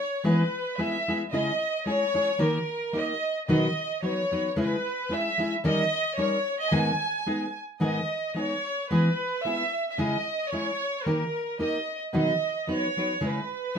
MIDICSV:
0, 0, Header, 1, 3, 480
1, 0, Start_track
1, 0, Key_signature, 5, "minor"
1, 0, Tempo, 540541
1, 212, Time_signature, 2, 2, 24, 8
1, 12244, End_track
2, 0, Start_track
2, 0, Title_t, "Violin section"
2, 0, Program_c, 0, 48
2, 0, Note_on_c, 0, 73, 81
2, 196, Note_off_c, 0, 73, 0
2, 245, Note_on_c, 0, 71, 71
2, 708, Note_off_c, 0, 71, 0
2, 710, Note_on_c, 0, 76, 86
2, 1071, Note_off_c, 0, 76, 0
2, 1162, Note_on_c, 0, 75, 78
2, 1613, Note_off_c, 0, 75, 0
2, 1658, Note_on_c, 0, 73, 94
2, 2137, Note_off_c, 0, 73, 0
2, 2156, Note_on_c, 0, 70, 80
2, 2627, Note_on_c, 0, 75, 82
2, 2630, Note_off_c, 0, 70, 0
2, 2998, Note_off_c, 0, 75, 0
2, 3103, Note_on_c, 0, 75, 70
2, 3553, Note_off_c, 0, 75, 0
2, 3575, Note_on_c, 0, 73, 75
2, 4026, Note_off_c, 0, 73, 0
2, 4080, Note_on_c, 0, 71, 82
2, 4549, Note_off_c, 0, 71, 0
2, 4563, Note_on_c, 0, 76, 84
2, 4920, Note_off_c, 0, 76, 0
2, 5024, Note_on_c, 0, 75, 91
2, 5465, Note_off_c, 0, 75, 0
2, 5502, Note_on_c, 0, 73, 87
2, 5862, Note_on_c, 0, 75, 86
2, 5867, Note_off_c, 0, 73, 0
2, 5965, Note_off_c, 0, 75, 0
2, 5965, Note_on_c, 0, 80, 85
2, 6717, Note_off_c, 0, 80, 0
2, 6944, Note_on_c, 0, 75, 65
2, 7396, Note_off_c, 0, 75, 0
2, 7440, Note_on_c, 0, 73, 76
2, 7902, Note_on_c, 0, 71, 75
2, 7912, Note_off_c, 0, 73, 0
2, 8345, Note_off_c, 0, 71, 0
2, 8369, Note_on_c, 0, 76, 83
2, 8741, Note_off_c, 0, 76, 0
2, 8796, Note_on_c, 0, 76, 62
2, 8854, Note_off_c, 0, 76, 0
2, 8854, Note_on_c, 0, 75, 76
2, 9315, Note_on_c, 0, 73, 83
2, 9332, Note_off_c, 0, 75, 0
2, 9801, Note_off_c, 0, 73, 0
2, 9809, Note_on_c, 0, 70, 70
2, 10292, Note_off_c, 0, 70, 0
2, 10307, Note_on_c, 0, 75, 69
2, 10649, Note_off_c, 0, 75, 0
2, 10778, Note_on_c, 0, 75, 68
2, 11227, Note_off_c, 0, 75, 0
2, 11287, Note_on_c, 0, 73, 79
2, 11752, Note_off_c, 0, 73, 0
2, 11777, Note_on_c, 0, 71, 70
2, 12217, Note_on_c, 0, 76, 91
2, 12234, Note_off_c, 0, 71, 0
2, 12244, Note_off_c, 0, 76, 0
2, 12244, End_track
3, 0, Start_track
3, 0, Title_t, "Nylon-string guitar"
3, 0, Program_c, 1, 24
3, 211, Note_on_c, 1, 52, 64
3, 216, Note_on_c, 1, 56, 69
3, 220, Note_on_c, 1, 59, 59
3, 221, Note_on_c, 1, 64, 69
3, 226, Note_on_c, 1, 68, 67
3, 368, Note_off_c, 1, 52, 0
3, 371, Note_off_c, 1, 56, 0
3, 373, Note_off_c, 1, 59, 0
3, 373, Note_off_c, 1, 64, 0
3, 375, Note_off_c, 1, 68, 0
3, 694, Note_on_c, 1, 56, 47
3, 698, Note_on_c, 1, 59, 53
3, 703, Note_on_c, 1, 68, 48
3, 704, Note_on_c, 1, 64, 59
3, 849, Note_off_c, 1, 56, 0
3, 851, Note_off_c, 1, 59, 0
3, 853, Note_off_c, 1, 68, 0
3, 854, Note_off_c, 1, 64, 0
3, 960, Note_on_c, 1, 59, 43
3, 961, Note_on_c, 1, 56, 43
3, 963, Note_on_c, 1, 64, 49
3, 970, Note_on_c, 1, 68, 46
3, 1088, Note_off_c, 1, 56, 0
3, 1088, Note_off_c, 1, 59, 0
3, 1089, Note_off_c, 1, 64, 0
3, 1092, Note_off_c, 1, 68, 0
3, 1179, Note_on_c, 1, 49, 65
3, 1185, Note_on_c, 1, 56, 59
3, 1186, Note_on_c, 1, 64, 73
3, 1188, Note_on_c, 1, 61, 79
3, 1192, Note_on_c, 1, 68, 68
3, 1331, Note_off_c, 1, 49, 0
3, 1334, Note_off_c, 1, 56, 0
3, 1335, Note_off_c, 1, 64, 0
3, 1336, Note_off_c, 1, 61, 0
3, 1338, Note_off_c, 1, 68, 0
3, 1648, Note_on_c, 1, 56, 47
3, 1656, Note_on_c, 1, 61, 52
3, 1658, Note_on_c, 1, 64, 53
3, 1661, Note_on_c, 1, 68, 53
3, 1807, Note_off_c, 1, 56, 0
3, 1811, Note_off_c, 1, 61, 0
3, 1812, Note_off_c, 1, 64, 0
3, 1814, Note_off_c, 1, 68, 0
3, 1900, Note_on_c, 1, 56, 50
3, 1904, Note_on_c, 1, 64, 46
3, 1905, Note_on_c, 1, 61, 47
3, 1912, Note_on_c, 1, 68, 55
3, 2039, Note_off_c, 1, 56, 0
3, 2041, Note_off_c, 1, 64, 0
3, 2042, Note_off_c, 1, 61, 0
3, 2045, Note_off_c, 1, 68, 0
3, 2120, Note_on_c, 1, 51, 68
3, 2121, Note_on_c, 1, 63, 69
3, 2125, Note_on_c, 1, 58, 76
3, 2125, Note_on_c, 1, 67, 70
3, 2130, Note_on_c, 1, 70, 80
3, 2284, Note_off_c, 1, 51, 0
3, 2285, Note_off_c, 1, 63, 0
3, 2287, Note_off_c, 1, 58, 0
3, 2287, Note_off_c, 1, 67, 0
3, 2289, Note_off_c, 1, 70, 0
3, 2602, Note_on_c, 1, 58, 49
3, 2608, Note_on_c, 1, 63, 47
3, 2616, Note_on_c, 1, 67, 55
3, 2620, Note_on_c, 1, 70, 55
3, 2769, Note_off_c, 1, 58, 0
3, 2772, Note_off_c, 1, 63, 0
3, 2776, Note_off_c, 1, 67, 0
3, 2778, Note_off_c, 1, 70, 0
3, 3094, Note_on_c, 1, 47, 67
3, 3097, Note_on_c, 1, 54, 63
3, 3103, Note_on_c, 1, 51, 70
3, 3103, Note_on_c, 1, 59, 67
3, 3103, Note_on_c, 1, 63, 70
3, 3106, Note_on_c, 1, 71, 62
3, 3257, Note_off_c, 1, 47, 0
3, 3258, Note_off_c, 1, 54, 0
3, 3261, Note_off_c, 1, 51, 0
3, 3261, Note_off_c, 1, 63, 0
3, 3262, Note_off_c, 1, 59, 0
3, 3263, Note_off_c, 1, 71, 0
3, 3573, Note_on_c, 1, 54, 52
3, 3577, Note_on_c, 1, 59, 53
3, 3582, Note_on_c, 1, 63, 49
3, 3590, Note_on_c, 1, 71, 57
3, 3737, Note_off_c, 1, 54, 0
3, 3739, Note_off_c, 1, 59, 0
3, 3742, Note_off_c, 1, 63, 0
3, 3746, Note_off_c, 1, 71, 0
3, 3831, Note_on_c, 1, 54, 45
3, 3840, Note_on_c, 1, 59, 44
3, 3840, Note_on_c, 1, 63, 43
3, 3841, Note_on_c, 1, 71, 47
3, 3971, Note_off_c, 1, 54, 0
3, 3975, Note_off_c, 1, 59, 0
3, 3976, Note_off_c, 1, 63, 0
3, 3976, Note_off_c, 1, 71, 0
3, 4051, Note_on_c, 1, 49, 67
3, 4053, Note_on_c, 1, 56, 75
3, 4055, Note_on_c, 1, 61, 72
3, 4064, Note_on_c, 1, 64, 68
3, 4066, Note_on_c, 1, 68, 71
3, 4214, Note_off_c, 1, 49, 0
3, 4215, Note_off_c, 1, 56, 0
3, 4216, Note_off_c, 1, 61, 0
3, 4220, Note_off_c, 1, 64, 0
3, 4221, Note_off_c, 1, 68, 0
3, 4521, Note_on_c, 1, 56, 46
3, 4524, Note_on_c, 1, 61, 52
3, 4534, Note_on_c, 1, 64, 55
3, 4542, Note_on_c, 1, 68, 54
3, 4687, Note_off_c, 1, 56, 0
3, 4688, Note_off_c, 1, 61, 0
3, 4693, Note_off_c, 1, 64, 0
3, 4697, Note_off_c, 1, 68, 0
3, 4776, Note_on_c, 1, 56, 48
3, 4787, Note_on_c, 1, 61, 44
3, 4792, Note_on_c, 1, 64, 54
3, 4795, Note_on_c, 1, 68, 51
3, 4919, Note_off_c, 1, 56, 0
3, 4925, Note_off_c, 1, 61, 0
3, 4927, Note_off_c, 1, 64, 0
3, 4929, Note_off_c, 1, 68, 0
3, 5008, Note_on_c, 1, 51, 73
3, 5014, Note_on_c, 1, 61, 71
3, 5015, Note_on_c, 1, 63, 81
3, 5016, Note_on_c, 1, 55, 69
3, 5017, Note_on_c, 1, 70, 87
3, 5168, Note_off_c, 1, 51, 0
3, 5171, Note_off_c, 1, 61, 0
3, 5172, Note_off_c, 1, 55, 0
3, 5172, Note_off_c, 1, 63, 0
3, 5173, Note_off_c, 1, 70, 0
3, 5483, Note_on_c, 1, 55, 50
3, 5492, Note_on_c, 1, 61, 68
3, 5493, Note_on_c, 1, 63, 54
3, 5497, Note_on_c, 1, 70, 58
3, 5645, Note_off_c, 1, 55, 0
3, 5649, Note_off_c, 1, 61, 0
3, 5650, Note_off_c, 1, 63, 0
3, 5651, Note_off_c, 1, 70, 0
3, 5961, Note_on_c, 1, 51, 69
3, 5967, Note_on_c, 1, 56, 77
3, 5967, Note_on_c, 1, 68, 75
3, 5968, Note_on_c, 1, 44, 61
3, 5969, Note_on_c, 1, 59, 64
3, 5969, Note_on_c, 1, 63, 66
3, 6124, Note_off_c, 1, 51, 0
3, 6127, Note_off_c, 1, 56, 0
3, 6127, Note_off_c, 1, 68, 0
3, 6128, Note_off_c, 1, 44, 0
3, 6128, Note_off_c, 1, 59, 0
3, 6128, Note_off_c, 1, 63, 0
3, 6450, Note_on_c, 1, 56, 48
3, 6455, Note_on_c, 1, 59, 55
3, 6458, Note_on_c, 1, 63, 53
3, 6462, Note_on_c, 1, 68, 51
3, 6612, Note_off_c, 1, 56, 0
3, 6614, Note_off_c, 1, 59, 0
3, 6616, Note_off_c, 1, 63, 0
3, 6618, Note_off_c, 1, 68, 0
3, 6925, Note_on_c, 1, 44, 61
3, 6928, Note_on_c, 1, 56, 62
3, 6932, Note_on_c, 1, 51, 62
3, 6934, Note_on_c, 1, 59, 70
3, 6934, Note_on_c, 1, 63, 68
3, 6940, Note_on_c, 1, 68, 74
3, 7094, Note_off_c, 1, 44, 0
3, 7095, Note_off_c, 1, 56, 0
3, 7097, Note_off_c, 1, 51, 0
3, 7098, Note_off_c, 1, 59, 0
3, 7098, Note_off_c, 1, 63, 0
3, 7101, Note_off_c, 1, 68, 0
3, 7410, Note_on_c, 1, 56, 46
3, 7416, Note_on_c, 1, 59, 44
3, 7421, Note_on_c, 1, 63, 46
3, 7425, Note_on_c, 1, 68, 56
3, 7576, Note_off_c, 1, 56, 0
3, 7579, Note_off_c, 1, 59, 0
3, 7582, Note_off_c, 1, 63, 0
3, 7584, Note_off_c, 1, 68, 0
3, 7908, Note_on_c, 1, 56, 63
3, 7909, Note_on_c, 1, 52, 60
3, 7912, Note_on_c, 1, 59, 69
3, 7914, Note_on_c, 1, 64, 64
3, 7919, Note_on_c, 1, 68, 71
3, 8062, Note_off_c, 1, 52, 0
3, 8062, Note_off_c, 1, 56, 0
3, 8063, Note_off_c, 1, 59, 0
3, 8065, Note_off_c, 1, 64, 0
3, 8067, Note_off_c, 1, 68, 0
3, 8389, Note_on_c, 1, 56, 47
3, 8396, Note_on_c, 1, 59, 57
3, 8399, Note_on_c, 1, 64, 51
3, 8403, Note_on_c, 1, 68, 57
3, 8540, Note_off_c, 1, 56, 0
3, 8543, Note_off_c, 1, 59, 0
3, 8544, Note_off_c, 1, 64, 0
3, 8546, Note_off_c, 1, 68, 0
3, 8862, Note_on_c, 1, 49, 66
3, 8865, Note_on_c, 1, 56, 68
3, 8872, Note_on_c, 1, 64, 76
3, 8872, Note_on_c, 1, 68, 72
3, 8873, Note_on_c, 1, 61, 64
3, 9014, Note_off_c, 1, 49, 0
3, 9016, Note_off_c, 1, 56, 0
3, 9019, Note_off_c, 1, 64, 0
3, 9019, Note_off_c, 1, 68, 0
3, 9020, Note_off_c, 1, 61, 0
3, 9345, Note_on_c, 1, 61, 56
3, 9346, Note_on_c, 1, 56, 50
3, 9353, Note_on_c, 1, 64, 50
3, 9357, Note_on_c, 1, 68, 56
3, 9494, Note_off_c, 1, 56, 0
3, 9494, Note_off_c, 1, 61, 0
3, 9498, Note_off_c, 1, 64, 0
3, 9500, Note_off_c, 1, 68, 0
3, 9823, Note_on_c, 1, 51, 57
3, 9824, Note_on_c, 1, 58, 55
3, 9824, Note_on_c, 1, 63, 69
3, 9828, Note_on_c, 1, 67, 64
3, 9832, Note_on_c, 1, 70, 65
3, 9972, Note_off_c, 1, 51, 0
3, 9973, Note_off_c, 1, 58, 0
3, 9973, Note_off_c, 1, 63, 0
3, 9975, Note_off_c, 1, 67, 0
3, 9977, Note_off_c, 1, 70, 0
3, 10292, Note_on_c, 1, 58, 45
3, 10296, Note_on_c, 1, 63, 46
3, 10304, Note_on_c, 1, 70, 54
3, 10305, Note_on_c, 1, 67, 58
3, 10451, Note_off_c, 1, 58, 0
3, 10452, Note_off_c, 1, 63, 0
3, 10457, Note_off_c, 1, 67, 0
3, 10457, Note_off_c, 1, 70, 0
3, 10771, Note_on_c, 1, 47, 61
3, 10775, Note_on_c, 1, 51, 56
3, 10779, Note_on_c, 1, 54, 66
3, 10785, Note_on_c, 1, 63, 70
3, 10785, Note_on_c, 1, 71, 58
3, 10786, Note_on_c, 1, 59, 62
3, 10932, Note_off_c, 1, 47, 0
3, 10934, Note_off_c, 1, 51, 0
3, 10936, Note_off_c, 1, 54, 0
3, 10939, Note_off_c, 1, 59, 0
3, 10939, Note_off_c, 1, 63, 0
3, 10939, Note_off_c, 1, 71, 0
3, 11253, Note_on_c, 1, 54, 50
3, 11264, Note_on_c, 1, 59, 53
3, 11266, Note_on_c, 1, 63, 50
3, 11266, Note_on_c, 1, 71, 47
3, 11413, Note_off_c, 1, 54, 0
3, 11419, Note_off_c, 1, 59, 0
3, 11419, Note_off_c, 1, 63, 0
3, 11419, Note_off_c, 1, 71, 0
3, 11516, Note_on_c, 1, 54, 39
3, 11522, Note_on_c, 1, 59, 44
3, 11526, Note_on_c, 1, 63, 48
3, 11530, Note_on_c, 1, 71, 46
3, 11649, Note_off_c, 1, 54, 0
3, 11652, Note_off_c, 1, 59, 0
3, 11654, Note_off_c, 1, 63, 0
3, 11656, Note_off_c, 1, 71, 0
3, 11729, Note_on_c, 1, 49, 68
3, 11731, Note_on_c, 1, 56, 60
3, 11737, Note_on_c, 1, 61, 70
3, 11738, Note_on_c, 1, 64, 66
3, 11738, Note_on_c, 1, 68, 72
3, 11889, Note_off_c, 1, 49, 0
3, 11890, Note_off_c, 1, 56, 0
3, 11893, Note_off_c, 1, 61, 0
3, 11893, Note_off_c, 1, 64, 0
3, 11893, Note_off_c, 1, 68, 0
3, 12211, Note_on_c, 1, 56, 49
3, 12217, Note_on_c, 1, 61, 53
3, 12244, Note_off_c, 1, 56, 0
3, 12244, Note_off_c, 1, 61, 0
3, 12244, End_track
0, 0, End_of_file